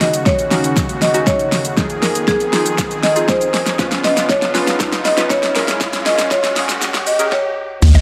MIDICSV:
0, 0, Header, 1, 9, 480
1, 0, Start_track
1, 0, Tempo, 504202
1, 1689, Time_signature, 4, 2, 24, 8
1, 7627, End_track
2, 0, Start_track
2, 0, Title_t, "Synth pluck"
2, 0, Program_c, 0, 84
2, 7569, Note_on_c, 0, 75, 76
2, 7627, Note_off_c, 0, 75, 0
2, 7627, End_track
3, 0, Start_track
3, 0, Title_t, "Marimba"
3, 0, Program_c, 1, 12
3, 7, Note_on_c, 1, 75, 97
3, 231, Note_off_c, 1, 75, 0
3, 246, Note_on_c, 1, 73, 96
3, 694, Note_off_c, 1, 73, 0
3, 968, Note_on_c, 1, 75, 103
3, 1206, Note_on_c, 1, 73, 99
3, 1216, Note_off_c, 1, 75, 0
3, 1654, Note_off_c, 1, 73, 0
3, 1927, Note_on_c, 1, 70, 99
3, 2168, Note_on_c, 1, 68, 99
3, 2175, Note_off_c, 1, 70, 0
3, 2615, Note_off_c, 1, 68, 0
3, 2889, Note_on_c, 1, 75, 108
3, 3128, Note_on_c, 1, 72, 98
3, 3136, Note_off_c, 1, 75, 0
3, 3575, Note_off_c, 1, 72, 0
3, 3848, Note_on_c, 1, 75, 108
3, 4088, Note_on_c, 1, 73, 102
3, 4096, Note_off_c, 1, 75, 0
3, 4535, Note_off_c, 1, 73, 0
3, 4808, Note_on_c, 1, 75, 113
3, 5049, Note_on_c, 1, 73, 102
3, 5055, Note_off_c, 1, 75, 0
3, 5495, Note_off_c, 1, 73, 0
3, 5769, Note_on_c, 1, 75, 108
3, 5992, Note_off_c, 1, 75, 0
3, 6009, Note_on_c, 1, 73, 103
3, 6455, Note_off_c, 1, 73, 0
3, 6730, Note_on_c, 1, 75, 108
3, 6970, Note_on_c, 1, 73, 101
3, 6977, Note_off_c, 1, 75, 0
3, 7416, Note_off_c, 1, 73, 0
3, 7627, End_track
4, 0, Start_track
4, 0, Title_t, "Synth keys"
4, 0, Program_c, 2, 88
4, 0, Note_on_c, 2, 61, 77
4, 0, Note_on_c, 2, 63, 67
4, 0, Note_on_c, 2, 66, 81
4, 137, Note_off_c, 2, 61, 0
4, 138, Note_off_c, 2, 63, 0
4, 139, Note_off_c, 2, 66, 0
4, 485, Note_on_c, 2, 61, 80
4, 487, Note_on_c, 2, 63, 75
4, 490, Note_on_c, 2, 66, 90
4, 796, Note_off_c, 2, 61, 0
4, 797, Note_off_c, 2, 63, 0
4, 798, Note_off_c, 2, 66, 0
4, 1085, Note_on_c, 2, 61, 85
4, 1087, Note_on_c, 2, 63, 81
4, 1090, Note_on_c, 2, 66, 93
4, 1396, Note_off_c, 2, 61, 0
4, 1397, Note_off_c, 2, 63, 0
4, 1398, Note_off_c, 2, 66, 0
4, 1685, Note_on_c, 2, 63, 75
4, 1687, Note_on_c, 2, 65, 65
4, 1689, Note_on_c, 2, 68, 82
4, 2057, Note_off_c, 2, 63, 0
4, 2059, Note_off_c, 2, 65, 0
4, 2060, Note_off_c, 2, 68, 0
4, 2405, Note_on_c, 2, 63, 74
4, 2407, Note_on_c, 2, 65, 67
4, 2409, Note_on_c, 2, 68, 80
4, 2715, Note_off_c, 2, 63, 0
4, 2717, Note_off_c, 2, 65, 0
4, 2718, Note_off_c, 2, 68, 0
4, 3006, Note_on_c, 2, 63, 80
4, 3008, Note_on_c, 2, 65, 73
4, 3011, Note_on_c, 2, 68, 92
4, 3316, Note_off_c, 2, 63, 0
4, 3317, Note_off_c, 2, 65, 0
4, 3319, Note_off_c, 2, 68, 0
4, 3606, Note_on_c, 2, 61, 75
4, 3608, Note_on_c, 2, 65, 71
4, 3611, Note_on_c, 2, 71, 87
4, 3978, Note_off_c, 2, 61, 0
4, 3979, Note_off_c, 2, 65, 0
4, 3981, Note_off_c, 2, 71, 0
4, 4325, Note_on_c, 2, 61, 89
4, 4327, Note_on_c, 2, 65, 81
4, 4330, Note_on_c, 2, 71, 97
4, 4636, Note_off_c, 2, 61, 0
4, 4637, Note_off_c, 2, 65, 0
4, 4638, Note_off_c, 2, 71, 0
4, 4925, Note_on_c, 2, 61, 89
4, 4927, Note_on_c, 2, 65, 76
4, 4930, Note_on_c, 2, 71, 98
4, 5236, Note_off_c, 2, 61, 0
4, 5237, Note_off_c, 2, 65, 0
4, 5238, Note_off_c, 2, 71, 0
4, 5286, Note_on_c, 2, 61, 85
4, 5289, Note_on_c, 2, 68, 77
4, 5290, Note_on_c, 2, 70, 94
4, 6055, Note_off_c, 2, 61, 0
4, 6057, Note_off_c, 2, 68, 0
4, 6058, Note_off_c, 2, 70, 0
4, 6246, Note_on_c, 2, 61, 72
4, 6248, Note_on_c, 2, 68, 70
4, 6251, Note_on_c, 2, 70, 82
4, 6556, Note_off_c, 2, 61, 0
4, 6557, Note_off_c, 2, 68, 0
4, 6558, Note_off_c, 2, 70, 0
4, 6845, Note_on_c, 2, 61, 85
4, 6847, Note_on_c, 2, 68, 79
4, 6850, Note_on_c, 2, 70, 93
4, 6967, Note_off_c, 2, 61, 0
4, 6968, Note_off_c, 2, 68, 0
4, 6969, Note_off_c, 2, 70, 0
4, 7627, End_track
5, 0, Start_track
5, 0, Title_t, "Supersaw synth"
5, 0, Program_c, 3, 81
5, 0, Note_on_c, 3, 39, 83
5, 0, Note_on_c, 3, 49, 73
5, 0, Note_on_c, 3, 66, 83
5, 1669, Note_off_c, 3, 39, 0
5, 1669, Note_off_c, 3, 49, 0
5, 1669, Note_off_c, 3, 66, 0
5, 1687, Note_on_c, 3, 41, 81
5, 1687, Note_on_c, 3, 51, 72
5, 1688, Note_on_c, 3, 68, 87
5, 3589, Note_off_c, 3, 41, 0
5, 3589, Note_off_c, 3, 51, 0
5, 3589, Note_off_c, 3, 68, 0
5, 3608, Note_on_c, 3, 49, 82
5, 3609, Note_on_c, 3, 59, 74
5, 3609, Note_on_c, 3, 65, 92
5, 5272, Note_off_c, 3, 49, 0
5, 5272, Note_off_c, 3, 59, 0
5, 5272, Note_off_c, 3, 65, 0
5, 5288, Note_on_c, 3, 46, 82
5, 5288, Note_on_c, 3, 56, 73
5, 5288, Note_on_c, 3, 61, 89
5, 6951, Note_off_c, 3, 56, 0
5, 6952, Note_off_c, 3, 46, 0
5, 6952, Note_off_c, 3, 61, 0
5, 7448, Note_on_c, 3, 61, 76
5, 7448, Note_on_c, 3, 66, 90
5, 7449, Note_on_c, 3, 51, 84
5, 7627, Note_off_c, 3, 51, 0
5, 7627, Note_off_c, 3, 61, 0
5, 7627, Note_off_c, 3, 66, 0
5, 7627, End_track
6, 0, Start_track
6, 0, Title_t, "Analog synth bass"
6, 0, Program_c, 4, 38
6, 7449, Note_on_c, 4, 39, 116
6, 7594, Note_off_c, 4, 39, 0
6, 7627, End_track
7, 0, Start_track
7, 0, Title_t, "Downlifter"
7, 0, Program_c, 5, 103
7, 7449, Note_on_c, 5, 60, 92
7, 7627, Note_off_c, 5, 60, 0
7, 7627, End_track
8, 0, Start_track
8, 0, Title_t, "Riser"
8, 0, Program_c, 6, 103
8, 0, Note_on_c, 6, 60, 83
8, 6968, Note_off_c, 6, 60, 0
8, 7627, End_track
9, 0, Start_track
9, 0, Title_t, "Drums"
9, 8, Note_on_c, 9, 38, 88
9, 8, Note_on_c, 9, 46, 75
9, 8, Note_on_c, 9, 82, 53
9, 103, Note_off_c, 9, 38, 0
9, 103, Note_off_c, 9, 46, 0
9, 103, Note_off_c, 9, 82, 0
9, 129, Note_on_c, 9, 42, 79
9, 129, Note_on_c, 9, 82, 78
9, 224, Note_off_c, 9, 42, 0
9, 224, Note_off_c, 9, 82, 0
9, 248, Note_on_c, 9, 36, 110
9, 248, Note_on_c, 9, 38, 87
9, 249, Note_on_c, 9, 82, 66
9, 343, Note_off_c, 9, 36, 0
9, 343, Note_off_c, 9, 38, 0
9, 345, Note_off_c, 9, 82, 0
9, 368, Note_on_c, 9, 42, 55
9, 368, Note_on_c, 9, 82, 61
9, 463, Note_off_c, 9, 42, 0
9, 463, Note_off_c, 9, 82, 0
9, 487, Note_on_c, 9, 46, 72
9, 487, Note_on_c, 9, 82, 53
9, 488, Note_on_c, 9, 38, 90
9, 582, Note_off_c, 9, 46, 0
9, 582, Note_off_c, 9, 82, 0
9, 583, Note_off_c, 9, 38, 0
9, 610, Note_on_c, 9, 42, 71
9, 610, Note_on_c, 9, 82, 69
9, 705, Note_off_c, 9, 42, 0
9, 705, Note_off_c, 9, 82, 0
9, 728, Note_on_c, 9, 38, 93
9, 729, Note_on_c, 9, 36, 115
9, 730, Note_on_c, 9, 82, 93
9, 823, Note_off_c, 9, 38, 0
9, 825, Note_off_c, 9, 36, 0
9, 825, Note_off_c, 9, 82, 0
9, 850, Note_on_c, 9, 42, 58
9, 850, Note_on_c, 9, 82, 59
9, 945, Note_off_c, 9, 42, 0
9, 945, Note_off_c, 9, 82, 0
9, 968, Note_on_c, 9, 38, 89
9, 968, Note_on_c, 9, 46, 75
9, 968, Note_on_c, 9, 82, 55
9, 1063, Note_off_c, 9, 46, 0
9, 1063, Note_off_c, 9, 82, 0
9, 1064, Note_off_c, 9, 38, 0
9, 1088, Note_on_c, 9, 42, 71
9, 1088, Note_on_c, 9, 82, 74
9, 1183, Note_off_c, 9, 42, 0
9, 1183, Note_off_c, 9, 82, 0
9, 1207, Note_on_c, 9, 36, 126
9, 1208, Note_on_c, 9, 38, 91
9, 1210, Note_on_c, 9, 82, 83
9, 1302, Note_off_c, 9, 36, 0
9, 1303, Note_off_c, 9, 38, 0
9, 1305, Note_off_c, 9, 82, 0
9, 1328, Note_on_c, 9, 42, 60
9, 1328, Note_on_c, 9, 82, 58
9, 1423, Note_off_c, 9, 42, 0
9, 1423, Note_off_c, 9, 82, 0
9, 1448, Note_on_c, 9, 46, 70
9, 1448, Note_on_c, 9, 82, 52
9, 1449, Note_on_c, 9, 38, 91
9, 1543, Note_off_c, 9, 46, 0
9, 1543, Note_off_c, 9, 82, 0
9, 1544, Note_off_c, 9, 38, 0
9, 1569, Note_on_c, 9, 42, 69
9, 1569, Note_on_c, 9, 82, 69
9, 1664, Note_off_c, 9, 42, 0
9, 1664, Note_off_c, 9, 82, 0
9, 1688, Note_on_c, 9, 36, 119
9, 1689, Note_on_c, 9, 38, 96
9, 1689, Note_on_c, 9, 82, 81
9, 1784, Note_off_c, 9, 36, 0
9, 1784, Note_off_c, 9, 38, 0
9, 1784, Note_off_c, 9, 82, 0
9, 1806, Note_on_c, 9, 42, 60
9, 1806, Note_on_c, 9, 82, 59
9, 1901, Note_off_c, 9, 42, 0
9, 1901, Note_off_c, 9, 82, 0
9, 1928, Note_on_c, 9, 46, 73
9, 1928, Note_on_c, 9, 82, 50
9, 1929, Note_on_c, 9, 38, 94
9, 2023, Note_off_c, 9, 46, 0
9, 2023, Note_off_c, 9, 82, 0
9, 2024, Note_off_c, 9, 38, 0
9, 2049, Note_on_c, 9, 42, 84
9, 2049, Note_on_c, 9, 82, 78
9, 2145, Note_off_c, 9, 42, 0
9, 2145, Note_off_c, 9, 82, 0
9, 2168, Note_on_c, 9, 36, 111
9, 2168, Note_on_c, 9, 38, 98
9, 2169, Note_on_c, 9, 82, 69
9, 2263, Note_off_c, 9, 36, 0
9, 2263, Note_off_c, 9, 38, 0
9, 2264, Note_off_c, 9, 82, 0
9, 2288, Note_on_c, 9, 42, 58
9, 2288, Note_on_c, 9, 82, 60
9, 2383, Note_off_c, 9, 42, 0
9, 2383, Note_off_c, 9, 82, 0
9, 2407, Note_on_c, 9, 46, 74
9, 2407, Note_on_c, 9, 82, 52
9, 2408, Note_on_c, 9, 38, 104
9, 2502, Note_off_c, 9, 46, 0
9, 2502, Note_off_c, 9, 82, 0
9, 2503, Note_off_c, 9, 38, 0
9, 2530, Note_on_c, 9, 42, 73
9, 2530, Note_on_c, 9, 82, 72
9, 2626, Note_off_c, 9, 42, 0
9, 2626, Note_off_c, 9, 82, 0
9, 2648, Note_on_c, 9, 38, 103
9, 2650, Note_on_c, 9, 36, 117
9, 2650, Note_on_c, 9, 82, 96
9, 2744, Note_off_c, 9, 38, 0
9, 2745, Note_off_c, 9, 36, 0
9, 2745, Note_off_c, 9, 82, 0
9, 2770, Note_on_c, 9, 42, 56
9, 2770, Note_on_c, 9, 82, 58
9, 2866, Note_off_c, 9, 42, 0
9, 2866, Note_off_c, 9, 82, 0
9, 2888, Note_on_c, 9, 38, 98
9, 2888, Note_on_c, 9, 46, 78
9, 2888, Note_on_c, 9, 82, 54
9, 2983, Note_off_c, 9, 38, 0
9, 2983, Note_off_c, 9, 46, 0
9, 2983, Note_off_c, 9, 82, 0
9, 3008, Note_on_c, 9, 42, 71
9, 3008, Note_on_c, 9, 82, 73
9, 3103, Note_off_c, 9, 42, 0
9, 3103, Note_off_c, 9, 82, 0
9, 3127, Note_on_c, 9, 36, 127
9, 3128, Note_on_c, 9, 38, 100
9, 3129, Note_on_c, 9, 82, 83
9, 3222, Note_off_c, 9, 36, 0
9, 3223, Note_off_c, 9, 38, 0
9, 3225, Note_off_c, 9, 82, 0
9, 3248, Note_on_c, 9, 42, 61
9, 3248, Note_on_c, 9, 82, 60
9, 3343, Note_off_c, 9, 42, 0
9, 3343, Note_off_c, 9, 82, 0
9, 3368, Note_on_c, 9, 38, 101
9, 3368, Note_on_c, 9, 46, 73
9, 3368, Note_on_c, 9, 82, 53
9, 3463, Note_off_c, 9, 38, 0
9, 3463, Note_off_c, 9, 46, 0
9, 3463, Note_off_c, 9, 82, 0
9, 3488, Note_on_c, 9, 38, 102
9, 3488, Note_on_c, 9, 42, 67
9, 3488, Note_on_c, 9, 82, 68
9, 3583, Note_off_c, 9, 38, 0
9, 3583, Note_off_c, 9, 42, 0
9, 3583, Note_off_c, 9, 82, 0
9, 3608, Note_on_c, 9, 36, 115
9, 3608, Note_on_c, 9, 38, 99
9, 3608, Note_on_c, 9, 82, 81
9, 3703, Note_off_c, 9, 38, 0
9, 3703, Note_off_c, 9, 82, 0
9, 3704, Note_off_c, 9, 36, 0
9, 3726, Note_on_c, 9, 42, 62
9, 3726, Note_on_c, 9, 82, 60
9, 3729, Note_on_c, 9, 38, 103
9, 3822, Note_off_c, 9, 42, 0
9, 3822, Note_off_c, 9, 82, 0
9, 3824, Note_off_c, 9, 38, 0
9, 3848, Note_on_c, 9, 46, 71
9, 3848, Note_on_c, 9, 82, 51
9, 3849, Note_on_c, 9, 38, 96
9, 3943, Note_off_c, 9, 46, 0
9, 3943, Note_off_c, 9, 82, 0
9, 3944, Note_off_c, 9, 38, 0
9, 3969, Note_on_c, 9, 38, 106
9, 3969, Note_on_c, 9, 42, 78
9, 3969, Note_on_c, 9, 82, 78
9, 4064, Note_off_c, 9, 38, 0
9, 4064, Note_off_c, 9, 42, 0
9, 4064, Note_off_c, 9, 82, 0
9, 4088, Note_on_c, 9, 36, 111
9, 4088, Note_on_c, 9, 38, 108
9, 4089, Note_on_c, 9, 82, 68
9, 4183, Note_off_c, 9, 36, 0
9, 4183, Note_off_c, 9, 38, 0
9, 4184, Note_off_c, 9, 82, 0
9, 4208, Note_on_c, 9, 38, 103
9, 4208, Note_on_c, 9, 42, 60
9, 4208, Note_on_c, 9, 82, 59
9, 4303, Note_off_c, 9, 38, 0
9, 4304, Note_off_c, 9, 42, 0
9, 4304, Note_off_c, 9, 82, 0
9, 4328, Note_on_c, 9, 38, 105
9, 4328, Note_on_c, 9, 46, 72
9, 4328, Note_on_c, 9, 82, 53
9, 4423, Note_off_c, 9, 46, 0
9, 4423, Note_off_c, 9, 82, 0
9, 4424, Note_off_c, 9, 38, 0
9, 4448, Note_on_c, 9, 38, 111
9, 4450, Note_on_c, 9, 42, 71
9, 4450, Note_on_c, 9, 82, 75
9, 4543, Note_off_c, 9, 38, 0
9, 4545, Note_off_c, 9, 42, 0
9, 4545, Note_off_c, 9, 82, 0
9, 4568, Note_on_c, 9, 38, 110
9, 4570, Note_on_c, 9, 36, 121
9, 4570, Note_on_c, 9, 82, 96
9, 4663, Note_off_c, 9, 38, 0
9, 4665, Note_off_c, 9, 36, 0
9, 4665, Note_off_c, 9, 82, 0
9, 4688, Note_on_c, 9, 38, 109
9, 4690, Note_on_c, 9, 42, 59
9, 4690, Note_on_c, 9, 82, 60
9, 4783, Note_off_c, 9, 38, 0
9, 4785, Note_off_c, 9, 42, 0
9, 4785, Note_off_c, 9, 82, 0
9, 4807, Note_on_c, 9, 46, 77
9, 4807, Note_on_c, 9, 82, 55
9, 4808, Note_on_c, 9, 38, 106
9, 4902, Note_off_c, 9, 46, 0
9, 4902, Note_off_c, 9, 82, 0
9, 4903, Note_off_c, 9, 38, 0
9, 4927, Note_on_c, 9, 38, 105
9, 4927, Note_on_c, 9, 42, 71
9, 4927, Note_on_c, 9, 82, 73
9, 5022, Note_off_c, 9, 38, 0
9, 5022, Note_off_c, 9, 42, 0
9, 5022, Note_off_c, 9, 82, 0
9, 5047, Note_on_c, 9, 36, 125
9, 5047, Note_on_c, 9, 38, 112
9, 5049, Note_on_c, 9, 82, 85
9, 5142, Note_off_c, 9, 36, 0
9, 5143, Note_off_c, 9, 38, 0
9, 5145, Note_off_c, 9, 82, 0
9, 5168, Note_on_c, 9, 38, 113
9, 5168, Note_on_c, 9, 42, 58
9, 5168, Note_on_c, 9, 82, 61
9, 5263, Note_off_c, 9, 38, 0
9, 5263, Note_off_c, 9, 42, 0
9, 5263, Note_off_c, 9, 82, 0
9, 5287, Note_on_c, 9, 46, 73
9, 5287, Note_on_c, 9, 82, 55
9, 5288, Note_on_c, 9, 38, 113
9, 5382, Note_off_c, 9, 46, 0
9, 5382, Note_off_c, 9, 82, 0
9, 5383, Note_off_c, 9, 38, 0
9, 5408, Note_on_c, 9, 38, 112
9, 5408, Note_on_c, 9, 42, 72
9, 5408, Note_on_c, 9, 82, 73
9, 5503, Note_off_c, 9, 38, 0
9, 5503, Note_off_c, 9, 42, 0
9, 5503, Note_off_c, 9, 82, 0
9, 5528, Note_on_c, 9, 36, 119
9, 5528, Note_on_c, 9, 38, 109
9, 5528, Note_on_c, 9, 82, 82
9, 5623, Note_off_c, 9, 36, 0
9, 5623, Note_off_c, 9, 38, 0
9, 5623, Note_off_c, 9, 82, 0
9, 5646, Note_on_c, 9, 42, 60
9, 5646, Note_on_c, 9, 82, 61
9, 5648, Note_on_c, 9, 38, 112
9, 5741, Note_off_c, 9, 42, 0
9, 5741, Note_off_c, 9, 82, 0
9, 5744, Note_off_c, 9, 38, 0
9, 5767, Note_on_c, 9, 46, 75
9, 5767, Note_on_c, 9, 82, 54
9, 5768, Note_on_c, 9, 38, 116
9, 5863, Note_off_c, 9, 38, 0
9, 5863, Note_off_c, 9, 46, 0
9, 5863, Note_off_c, 9, 82, 0
9, 5888, Note_on_c, 9, 38, 117
9, 5888, Note_on_c, 9, 42, 82
9, 5888, Note_on_c, 9, 82, 81
9, 5983, Note_off_c, 9, 38, 0
9, 5984, Note_off_c, 9, 42, 0
9, 5984, Note_off_c, 9, 82, 0
9, 6007, Note_on_c, 9, 36, 114
9, 6007, Note_on_c, 9, 38, 114
9, 6008, Note_on_c, 9, 82, 70
9, 6102, Note_off_c, 9, 38, 0
9, 6103, Note_off_c, 9, 36, 0
9, 6103, Note_off_c, 9, 82, 0
9, 6127, Note_on_c, 9, 38, 114
9, 6128, Note_on_c, 9, 42, 59
9, 6128, Note_on_c, 9, 82, 57
9, 6223, Note_off_c, 9, 38, 0
9, 6223, Note_off_c, 9, 42, 0
9, 6223, Note_off_c, 9, 82, 0
9, 6247, Note_on_c, 9, 38, 121
9, 6247, Note_on_c, 9, 46, 77
9, 6247, Note_on_c, 9, 82, 54
9, 6342, Note_off_c, 9, 38, 0
9, 6342, Note_off_c, 9, 46, 0
9, 6342, Note_off_c, 9, 82, 0
9, 6367, Note_on_c, 9, 38, 119
9, 6369, Note_on_c, 9, 42, 73
9, 6369, Note_on_c, 9, 82, 74
9, 6462, Note_off_c, 9, 38, 0
9, 6464, Note_off_c, 9, 42, 0
9, 6464, Note_off_c, 9, 82, 0
9, 6488, Note_on_c, 9, 38, 119
9, 6490, Note_on_c, 9, 82, 97
9, 6583, Note_off_c, 9, 38, 0
9, 6585, Note_off_c, 9, 82, 0
9, 6608, Note_on_c, 9, 38, 125
9, 6609, Note_on_c, 9, 42, 57
9, 6609, Note_on_c, 9, 82, 59
9, 6703, Note_off_c, 9, 38, 0
9, 6705, Note_off_c, 9, 42, 0
9, 6705, Note_off_c, 9, 82, 0
9, 6727, Note_on_c, 9, 46, 77
9, 6727, Note_on_c, 9, 82, 55
9, 6822, Note_off_c, 9, 46, 0
9, 6822, Note_off_c, 9, 82, 0
9, 6847, Note_on_c, 9, 42, 74
9, 6847, Note_on_c, 9, 82, 75
9, 6942, Note_off_c, 9, 42, 0
9, 6942, Note_off_c, 9, 82, 0
9, 6968, Note_on_c, 9, 36, 119
9, 6968, Note_on_c, 9, 38, 94
9, 7063, Note_off_c, 9, 36, 0
9, 7063, Note_off_c, 9, 38, 0
9, 7448, Note_on_c, 9, 49, 107
9, 7448, Note_on_c, 9, 82, 83
9, 7449, Note_on_c, 9, 36, 115
9, 7543, Note_off_c, 9, 49, 0
9, 7543, Note_off_c, 9, 82, 0
9, 7544, Note_off_c, 9, 36, 0
9, 7566, Note_on_c, 9, 42, 60
9, 7566, Note_on_c, 9, 82, 61
9, 7627, Note_off_c, 9, 42, 0
9, 7627, Note_off_c, 9, 82, 0
9, 7627, End_track
0, 0, End_of_file